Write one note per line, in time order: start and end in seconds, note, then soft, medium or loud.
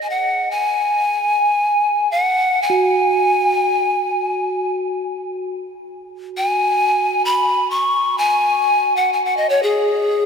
0.00 4.14 G#4 soft
0.00 0.11 G#5 soft
0.10 0.53 F#5 medium
0.51 2.11 G#5 medium
2.11 2.64 F#5 medium
2.62 4.76 G#5 medium
2.70 10.26 F#4 medium
6.37 7.27 G#5 medium
7.25 7.72 B5 medium
7.70 8.20 C#6 medium
8.18 8.98 G#5 medium
8.96 9.14 F#5 medium
9.13 9.27 G#5 medium
9.25 9.38 F#5 medium
9.37 9.51 D#5 medium
9.49 9.64 C#5 medium
9.63 10.26 G#4 medium